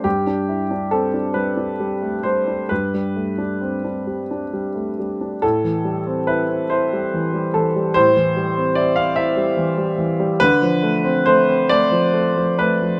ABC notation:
X:1
M:6/8
L:1/16
Q:3/8=46
K:Am
V:1 name="Grand piano"
G4 A2 B4 c2 | B8- B2 z2 | A4 B2 c4 A2 | c4 d f e6 |
B4 c2 d4 B2 |]
V:2 name="Grand piano" clef=bass
G,, D E D C D G, D G, A, G, D | G,, G, A, D C D G, D G, A, G, D | A,, E, G, C E C E G, E, G, E, G, | A,, E, G, C E C E G, E, G, E, G, |
D, F, A, C A, C A, F, A, F, A, F, |]